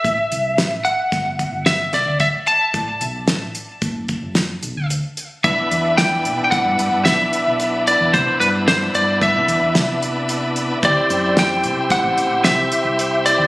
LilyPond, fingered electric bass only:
\new Staff \with { instrumentName = "Fingered electric bass" } { \clef bass \time 5/4 \key c \lydian \tempo 4 = 111 a,,16 r16 c,8 a,,8 r8 g,,8. g,,8. c,16 d,8 r8. | a,,16 r16 b,,8 a,,8 r8 fis,,8. fis,,8. b,,16 d,8 r8. | c,16 r16 e,4 b,,8 r16 g,16 g,16 g,16 b,,8 r16 b,,4 e,16 | c16 r16 g,4 g,8. c,16 e,16 e,16 c2 |
d,16 r16 fis,4 c,8 r16 a,,16 a,,16 a,,16 c,8 r16 c,4 dis,16 | }